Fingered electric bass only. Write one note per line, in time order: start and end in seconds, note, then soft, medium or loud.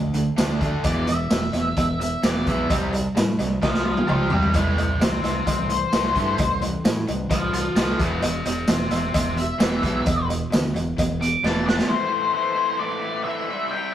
0.00 0.28 D2 medium
0.39 0.75 D2 medium
0.84 1.03 E1 loud
1.07 1.26 E1 medium
1.30 1.49 E1 medium
1.54 1.72 E1 medium
1.77 2.14 E1 medium
2.24 2.42 E1 medium
2.47 2.65 B1 medium
2.70 3.07 C2 loud
3.17 3.35 A2 medium
3.40 3.58 C2 medium
3.63 3.99 C2 medium
4.10 4.46 C2 medium
4.55 4.73 C2 loud
4.79 4.97 C2 medium
5.01 5.19 C2 medium
5.23 5.42 C2 medium
5.47 5.84 C2 medium
5.93 6.12 C2 medium
6.15 6.34 G2 medium
6.39 6.75 C2 medium
6.86 7.04 A2 loud
7.08 7.26 C2 medium
7.30 7.67 C2 medium
7.76 7.94 C2 loud
8.00 8.18 E1 medium
8.22 8.41 E1 loud
8.47 8.65 E1 loud
8.69 8.87 E1 medium
8.91 9.09 E1 medium
9.15 9.51 E1 medium
9.60 9.78 E1 medium
9.83 10.02 B1 medium
10.07 10.43 E1 medium
10.53 10.71 D2 medium
10.75 10.93 E1 medium
10.98 11.34 E1 medium
11.44 11.80 E1 medium